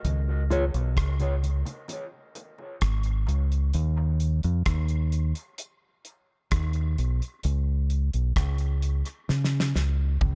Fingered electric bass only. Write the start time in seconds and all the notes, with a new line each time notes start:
0.04 C#2
0.74 B1
0.97 C#2
2.82 G#1
3.28 C#2
3.74 D#2
4.44 F2
4.66 D#2
6.52 D#2
6.98 B1
7.45 C#2
8.14 B1
8.36 C#2
9.30 C#3
9.76 C#2
10.22 C#2